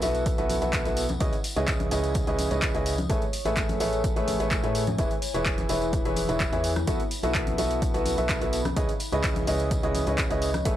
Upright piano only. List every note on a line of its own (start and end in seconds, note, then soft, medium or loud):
0.02 0.35 B3 medium
0.02 0.35 E4 medium
0.02 0.35 F#4 medium
0.02 0.35 A4 medium
0.02 0.35 B4 medium
0.02 0.35 E5 loud
0.38 0.59 B3 medium
0.38 0.59 E4 medium
0.38 0.59 F#4 medium
0.38 0.59 A4 medium
0.38 0.59 B4 medium
0.38 0.59 E5 loud
0.62 0.83 B3 medium
0.62 0.83 E4 medium
0.62 0.83 F#4 medium
0.62 0.83 A4 medium
0.62 0.83 B4 medium
0.62 0.83 E5 medium
0.85 1.04 B3 medium
0.85 1.04 E4 medium
0.85 1.04 F#4 medium
0.85 1.04 A4 medium
0.85 1.04 B4 medium
0.85 1.04 E5 medium
1.20 1.33 C#3 loud
1.20 1.33 E4 medium
1.20 1.33 G#4 medium
1.20 1.33 B4 medium
1.20 1.33 C#5 medium
1.20 1.33 D#5 loud
1.56 1.89 C#3 medium
1.56 1.89 E4 medium
1.56 1.89 G#4 medium
1.56 1.89 B4 medium
1.56 1.89 C#5 medium
1.56 1.89 D#5 loud
1.91 2.24 C#3 medium
1.91 2.24 E4 medium
1.91 2.24 G#4 medium
1.91 2.24 B4 medium
1.91 2.24 C#5 medium
1.91 2.24 D#5 loud
2.27 2.48 C#3 medium
2.27 2.48 E4 medium
2.27 2.48 G#4 medium
2.27 2.48 B4 medium
2.27 2.48 C#5 medium
2.27 2.48 D#5 loud
2.51 2.72 C#3 medium
2.51 2.72 E4 medium
2.51 2.72 G#4 medium
2.51 2.72 B4 medium
2.51 2.72 C#5 medium
2.51 2.72 D#5 medium
2.75 2.93 C#3 medium
2.75 2.93 E4 medium
2.75 2.93 G#4 medium
2.75 2.93 B4 medium
2.75 2.93 C#5 medium
2.75 2.93 D#5 medium
3.10 3.22 A3 loud
3.10 3.22 G#4 medium
3.10 3.22 A4 medium
3.10 3.22 B4 medium
3.10 3.22 C#5 medium
3.10 3.22 E5 loud
3.45 3.78 A3 medium
3.45 3.78 G#4 medium
3.45 3.78 A4 medium
3.45 3.78 B4 medium
3.45 3.78 C#5 medium
3.45 3.78 E5 loud
3.80 4.13 A3 medium
3.80 4.13 G#4 medium
3.80 4.13 A4 medium
3.80 4.13 B4 medium
3.80 4.13 C#5 medium
3.80 4.13 E5 medium
4.16 4.37 A3 medium
4.16 4.37 G#4 medium
4.16 4.37 A4 medium
4.16 4.37 B4 medium
4.16 4.37 C#5 medium
4.16 4.37 E5 loud
4.40 4.61 A3 medium
4.40 4.61 G#4 medium
4.40 4.61 A4 medium
4.40 4.61 B4 medium
4.40 4.61 C#5 medium
4.40 4.61 E5 medium
4.64 4.82 A3 medium
4.64 4.82 G#4 medium
4.64 4.82 A4 medium
4.64 4.82 B4 medium
4.64 4.82 C#5 medium
4.64 4.82 E5 loud
4.99 5.11 E3 medium
4.99 5.11 E4 medium
4.99 5.11 G#4 medium
4.99 5.11 B4 medium
4.99 5.11 C#5 medium
4.99 5.11 E5 loud
5.34 5.67 E3 medium
5.34 5.67 E4 medium
5.34 5.67 G#4 medium
5.34 5.67 B4 medium
5.34 5.67 C#5 medium
5.34 5.67 E5 medium
5.69 6.02 E3 medium
5.69 6.02 E4 medium
5.69 6.02 G#4 medium
5.69 6.02 B4 medium
5.69 6.02 C#5 medium
5.69 6.02 E5 loud
6.05 6.26 E3 medium
6.05 6.26 E4 medium
6.05 6.26 G#4 medium
6.05 6.26 B4 medium
6.05 6.26 C#5 medium
6.05 6.26 E5 loud
6.29 6.50 E3 medium
6.29 6.50 E4 medium
6.29 6.50 G#4 medium
6.29 6.50 B4 medium
6.29 6.50 C#5 medium
6.29 6.50 E5 medium
6.53 6.71 E3 medium
6.53 6.71 E4 medium
6.53 6.71 G#4 medium
6.53 6.71 B4 medium
6.53 6.71 C#5 medium
6.53 6.71 E5 loud
6.87 7.00 B3 loud
6.87 7.00 E4 medium
6.87 7.00 F#4 medium
6.87 7.00 A4 medium
6.87 7.00 B4 medium
6.87 7.00 E5 loud
7.23 7.56 B3 medium
7.23 7.56 E4 medium
7.23 7.56 F#4 medium
7.23 7.56 A4 medium
7.23 7.56 B4 medium
7.23 7.56 E5 loud
7.58 7.91 B3 medium
7.58 7.91 E4 medium
7.58 7.91 F#4 medium
7.58 7.91 A4 medium
7.58 7.91 B4 medium
7.58 7.91 E5 medium
7.94 8.15 B3 medium
7.94 8.15 E4 medium
7.94 8.15 F#4 medium
7.94 8.15 A4 medium
7.94 8.15 B4 medium
7.94 8.15 E5 loud
8.18 8.39 B3 medium
8.18 8.39 E4 medium
8.18 8.39 F#4 medium
8.18 8.39 A4 medium
8.18 8.39 B4 medium
8.18 8.39 E5 medium
8.41 8.60 B3 medium
8.41 8.60 E4 medium
8.41 8.60 F#4 medium
8.41 8.60 A4 medium
8.41 8.60 B4 medium
8.41 8.60 E5 medium
8.76 8.89 C#3 medium
8.76 8.89 E4 medium
8.76 8.89 G#4 medium
8.76 8.89 B4 medium
8.76 8.89 C#5 medium
8.76 8.89 D#5 loud
9.12 9.45 C#3 medium
9.12 9.45 E4 medium
9.12 9.45 G#4 medium
9.12 9.45 B4 medium
9.12 9.45 C#5 medium
9.12 9.45 D#5 loud
9.47 9.80 C#3 medium
9.47 9.80 E4 medium
9.47 9.80 G#4 medium
9.47 9.80 B4 medium
9.47 9.80 C#5 medium
9.47 9.80 D#5 medium
9.83 10.04 C#3 medium
9.83 10.04 E4 medium
9.83 10.04 G#4 medium
9.83 10.04 B4 medium
9.83 10.04 C#5 medium
9.83 10.04 D#5 loud
10.07 10.28 C#3 medium
10.07 10.28 E4 medium
10.07 10.28 G#4 medium
10.07 10.28 B4 medium
10.07 10.28 C#5 medium
10.07 10.28 D#5 medium
10.31 10.49 C#3 medium
10.31 10.49 E4 medium
10.31 10.49 G#4 medium
10.31 10.49 B4 medium
10.31 10.49 C#5 medium
10.31 10.49 D#5 medium
10.65 10.77 A3 loud
10.65 10.77 G#4 medium
10.65 10.77 A4 medium
10.65 10.77 B4 medium
10.65 10.77 C#5 medium
10.65 10.77 E5 loud